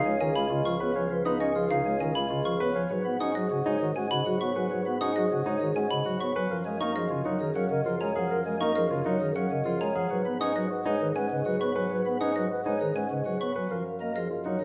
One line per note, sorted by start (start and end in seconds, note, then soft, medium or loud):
0.00 2.80 C#2 medium
0.05 0.17 G#3 medium
0.05 0.16 F4 medium
0.05 0.25 C#5 medium
0.20 0.31 D#3 medium
0.20 0.40 C#4 medium
0.20 0.31 F4 medium
0.20 0.40 G#4 medium
0.20 0.40 G#5 medium
0.35 0.47 G#3 medium
0.35 0.46 F4 medium
0.35 0.55 F5 medium
0.35 0.55 B5 medium
0.50 0.61 C#3 medium
0.50 0.70 F4 medium
0.50 0.61 F4 medium
0.50 0.70 D#5 medium
0.65 0.77 F3 medium
0.65 0.76 F4 medium
0.65 0.85 G#4 loud
0.65 0.85 C#6 medium
0.80 0.92 B3 medium
0.80 0.91 F4 medium
0.80 1.00 B4 medium
0.80 1.00 C#5 medium
0.95 1.07 F3 medium
0.95 1.07 F4 medium
0.95 1.15 C#5 medium
0.95 1.15 G#5 medium
1.10 1.22 F3 medium
1.10 1.21 F4 medium
1.10 1.30 B4 loud
1.25 1.37 B3 medium
1.25 1.45 D#4 medium
1.25 1.36 F4 medium
1.25 1.45 F5 medium
1.25 1.45 D#6 medium
1.40 1.52 C#4 medium
1.40 1.51 F4 medium
1.40 1.60 D#5 medium
1.55 1.67 F3 medium
1.55 1.66 F4 medium
1.55 1.75 F4 medium
1.55 1.75 G#4 loud
1.70 1.82 C#3 medium
1.70 1.90 D#4 medium
1.70 1.81 F4 medium
1.70 1.90 F5 medium
1.85 1.97 G#3 medium
1.85 1.97 F4 medium
1.85 2.05 C#5 medium
2.00 2.12 D#3 medium
2.00 2.20 C#4 medium
2.00 2.11 F4 medium
2.00 2.20 G#4 medium
2.00 2.20 G#5 medium
2.15 2.26 G#3 medium
2.15 2.26 F4 medium
2.15 2.35 F5 medium
2.15 2.35 B5 medium
2.30 2.41 C#3 medium
2.30 2.50 F4 medium
2.30 2.41 F4 soft
2.30 2.50 D#5 medium
2.45 2.56 F3 loud
2.45 2.56 F4 soft
2.45 2.65 G#4 medium
2.45 2.65 C#6 medium
2.60 2.72 B3 medium
2.60 2.71 F4 soft
2.60 2.80 B4 loud
2.60 2.80 C#5 medium
2.75 2.86 F3 medium
2.75 2.89 C#5 medium
2.75 2.95 G#5 medium
2.90 6.40 G#2 medium
2.90 3.02 F#3 medium
2.90 3.01 F#4 soft
2.90 3.10 B4 medium
2.90 3.10 C#5 medium
3.05 3.16 B3 medium
3.05 3.16 F#4 soft
3.05 3.25 F#5 medium
3.20 3.32 C#4 medium
3.20 3.40 D#4 medium
3.20 3.31 F#4 medium
3.20 3.40 D#5 medium
3.20 3.40 D#6 medium
3.35 3.47 F#3 medium
3.35 3.46 F#4 medium
3.35 3.55 G#4 medium
3.35 3.55 D#5 medium
3.50 3.62 C#3 medium
3.50 3.61 F#4 medium
3.50 3.70 F#4 medium
3.50 3.70 F#5 medium
3.65 3.77 G#3 medium
3.65 3.85 D#4 loud
3.65 3.76 F#4 medium
3.65 3.85 C#5 medium
3.80 3.92 D#3 medium
3.80 3.91 F#4 medium
3.80 4.00 G#4 medium
3.96 4.07 G#3 medium
3.96 4.15 C#4 medium
3.96 4.06 F#4 medium
3.96 4.15 F#5 medium
3.96 4.15 G#5 medium
4.11 4.22 C#3 medium
4.11 4.21 F#4 medium
4.11 4.30 D#5 medium
4.11 4.30 B5 medium
4.26 4.37 F#3 medium
4.26 4.45 F#4 medium
4.26 4.36 F#4 medium
4.26 4.45 G#4 medium
4.40 4.52 B3 medium
4.40 4.51 F#4 medium
4.40 4.60 C#5 medium
4.40 4.60 C#6 medium
4.56 4.67 F#3 medium
4.56 4.66 F#4 medium
4.56 4.75 B4 medium
4.56 4.75 G#5 medium
4.70 4.82 F#3 medium
4.70 4.81 F#4 medium
4.70 4.90 B4 medium
4.70 4.90 C#5 medium
4.85 4.97 B3 medium
4.85 4.96 F#4 medium
4.85 5.05 F#5 medium
5.01 5.12 C#4 medium
5.01 5.20 D#4 medium
5.01 5.11 F#4 medium
5.01 5.20 D#5 medium
5.01 5.20 D#6 medium
5.16 5.27 F#3 medium
5.16 5.26 F#4 medium
5.16 5.35 G#4 loud
5.16 5.35 D#5 medium
5.31 5.42 C#3 medium
5.31 5.41 F#4 medium
5.31 5.50 F#4 medium
5.31 5.50 F#5 medium
5.46 5.57 G#3 medium
5.46 5.65 D#4 loud
5.46 5.56 F#4 medium
5.46 5.65 C#5 medium
5.61 5.72 D#3 medium
5.61 5.71 F#4 medium
5.61 5.80 G#4 medium
5.75 5.87 G#3 medium
5.75 5.95 C#4 medium
5.75 5.86 F#4 medium
5.75 5.95 F#5 medium
5.75 5.95 G#5 medium
5.90 6.02 C#3 medium
5.90 6.01 F#4 soft
5.90 6.10 D#5 medium
5.90 6.10 B5 medium
6.05 6.17 F#3 medium
6.05 6.16 F#4 soft
6.05 6.25 F#4 medium
6.05 6.25 G#4 medium
6.20 6.32 B3 medium
6.20 6.31 F#4 soft
6.20 6.40 C#5 medium
6.20 6.40 C#6 medium
6.36 6.47 F#3 medium
6.36 6.55 B4 loud
6.36 6.55 G#5 medium
6.50 10.00 F#2 medium
6.50 6.62 F3 medium
6.50 6.70 A#4 medium
6.50 6.61 A#4 soft
6.50 6.70 A#4 medium
6.65 6.77 G#3 medium
6.65 6.76 A#4 soft
6.65 6.85 F5 medium
6.80 6.92 A#3 medium
6.80 7.00 D#4 medium
6.80 6.91 A#4 soft
6.80 7.00 D#5 medium
6.80 7.00 C#6 medium
6.95 7.07 F3 medium
6.95 7.15 G#4 medium
6.95 7.06 A#4 medium
6.95 7.15 D#5 medium
7.10 7.22 C#3 medium
7.10 7.30 F4 medium
7.10 7.21 A#4 medium
7.10 7.30 F5 medium
7.25 7.37 F#3 medium
7.25 7.45 D#4 medium
7.25 7.36 A#4 medium
7.25 7.45 C#5 medium
7.40 7.52 D#3 medium
7.40 7.60 G#4 loud
7.40 7.51 A#4 medium
7.55 7.67 F#3 medium
7.55 7.75 C#4 medium
7.55 7.66 A#4 medium
7.55 7.75 F5 medium
7.55 7.75 F#5 medium
7.70 7.82 C#3 medium
7.70 7.81 A#4 medium
7.70 7.90 D#5 medium
7.85 7.97 F3 medium
7.85 8.05 F4 medium
7.85 8.05 G#4 medium
7.85 7.96 A#4 medium
8.01 8.12 G#3 medium
8.01 8.11 A#4 medium
8.01 8.20 C#5 medium
8.01 8.20 A#5 medium
8.15 8.27 F3 medium
8.15 8.35 G#4 loud
8.15 8.26 A#4 medium
8.15 8.35 F#5 medium
8.30 8.42 F3 medium
8.30 8.41 A#4 medium
8.30 8.50 A#4 medium
8.46 8.57 G#3 medium
8.46 8.56 A#4 medium
8.46 8.65 F5 medium
8.61 8.72 A#3 medium
8.61 8.80 D#4 medium
8.61 8.71 A#4 medium
8.61 8.80 D#5 medium
8.61 8.80 C#6 medium
8.76 8.87 F3 loud
8.76 8.95 G#4 medium
8.76 8.86 A#4 medium
8.76 8.95 D#5 medium
8.90 9.02 C#3 medium
8.90 9.10 F4 medium
8.90 9.01 A#4 medium
8.90 9.10 F5 medium
9.05 9.17 F#3 medium
9.05 9.25 D#4 medium
9.05 9.16 A#4 medium
9.05 9.25 C#5 medium
9.21 9.32 D#3 loud
9.21 9.40 G#4 medium
9.21 9.31 A#4 medium
9.36 9.47 F#3 medium
9.36 9.55 C#4 medium
9.36 9.46 A#4 medium
9.36 9.55 F5 medium
9.36 9.55 F#5 medium
9.51 9.62 C#3 medium
9.51 9.61 A#4 medium
9.51 9.70 D#5 medium
9.66 9.77 F3 loud
9.66 9.85 F4 medium
9.66 9.85 G#4 medium
9.66 9.76 A#4 soft
9.81 9.92 G#3 medium
9.81 9.91 A#4 soft
9.81 10.00 C#5 medium
9.81 10.00 A#5 medium
9.95 10.07 F3 medium
9.95 10.15 G#4 loud
9.95 10.15 F#5 medium
10.10 13.60 G#2 medium
10.10 10.22 F#3 medium
10.10 10.30 B4 loud
10.10 10.21 B4 soft
10.10 10.30 C#5 medium
10.26 10.37 B3 medium
10.26 10.36 B4 soft
10.26 10.45 F#5 medium
10.41 10.52 C#4 medium
10.41 10.60 D#4 medium
10.41 10.52 B4 medium
10.41 10.60 D#5 medium
10.41 10.60 D#6 medium
10.56 10.67 F#3 medium
10.56 10.75 G#4 medium
10.56 10.66 B4 medium
10.56 10.75 D#5 medium
10.70 10.90 F#4 medium
10.70 10.81 B4 medium
10.70 10.90 F#5 medium
10.85 10.97 G#3 medium
10.85 11.05 D#4 loud
10.85 10.96 B4 medium
10.85 11.05 C#5 medium
11.00 11.12 D#3 medium
11.00 11.20 G#4 medium
11.00 11.11 B4 medium
11.15 11.27 G#3 medium
11.15 11.35 C#4 medium
11.15 11.26 B4 medium
11.15 11.35 F#5 medium
11.15 11.35 G#5 medium
11.31 11.42 C#3 medium
11.31 11.42 B4 medium
11.31 11.50 D#5 medium
11.45 11.57 F#3 medium
11.45 11.65 F#4 medium
11.45 11.65 G#4 medium
11.45 11.56 B4 medium
11.60 11.72 B3 medium
11.60 11.71 B4 medium
11.60 11.80 C#5 medium
11.60 11.80 C#6 medium
11.75 11.87 F#3 medium
11.75 11.95 B4 medium
11.75 11.86 B4 medium
11.75 11.95 G#5 medium
11.90 12.02 F#3 medium
11.90 12.10 B4 medium
11.90 12.01 B4 medium
11.90 12.10 C#5 medium
12.06 12.17 B3 medium
12.06 12.16 B4 medium
12.06 12.25 F#5 medium
12.20 12.32 C#4 medium
12.20 12.40 D#4 medium
12.20 12.31 B4 medium
12.20 12.40 D#5 medium
12.20 12.40 D#6 medium
12.36 12.47 F#3 medium
12.36 12.55 G#4 medium
12.36 12.46 B4 medium
12.36 12.55 D#5 medium
12.51 12.70 F#4 medium
12.51 12.61 B4 medium
12.51 12.70 F#5 medium
12.66 12.77 G#3 medium
12.66 12.85 D#4 medium
12.66 12.76 B4 medium
12.66 12.85 C#5 medium
12.80 12.92 D#3 medium
12.80 13.00 G#4 medium
12.80 12.91 B4 medium
12.95 13.07 G#3 medium
12.95 13.15 C#4 medium
12.95 13.06 B4 medium
12.95 13.15 F#5 medium
12.95 13.15 G#5 medium
13.10 13.22 C#3 medium
13.10 13.21 B4 soft
13.10 13.30 D#5 medium
13.25 13.37 F#3 medium
13.25 13.45 F#4 medium
13.25 13.45 G#4 medium
13.25 13.36 B4 soft
13.40 13.52 B3 medium
13.40 13.51 B4 soft
13.40 13.60 C#5 medium
13.40 13.60 C#6 medium
13.56 13.67 F#3 medium
13.56 13.75 B4 medium
13.56 13.75 G#5 medium
13.71 14.64 F#2 medium
13.71 13.82 F3 medium
13.71 13.81 A#4 soft
13.71 13.90 A#4 medium
13.86 13.96 A#4 soft
13.86 14.05 F5 medium
14.00 14.12 A#3 medium
14.00 14.11 A#4 soft
14.00 14.20 D#5 medium
14.15 14.27 F3 medium
14.15 14.35 G#4 medium
14.15 14.26 A#4 medium
14.15 14.35 D#5 medium
14.30 14.50 F4 medium
14.30 14.41 A#4 medium
14.30 14.50 F5 medium
14.45 14.57 F#3 medium
14.45 14.64 D#4 medium
14.45 14.56 A#4 medium
14.45 14.64 C#5 medium
14.60 14.64 D#3 medium
14.60 14.64 G#4 medium
14.60 14.64 A#4 medium